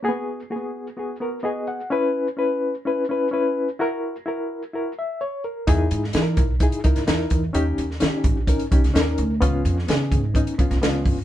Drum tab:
HH |----------------|----------------|----------------|x-x-x-x-xxxxx-x-|
SD |----------------|----------------|----------------|---oo------oo---|
BD |----------------|----------------|----------------|o-----o-o-o---o-|

HH |x-x-x-x-xxxxx-x-|x-x-x-x-xxxxx-o-|
SD |---oo------oo---|---oo------oo---|
BD |------o-o-o-----|o-----o-o-o---o-|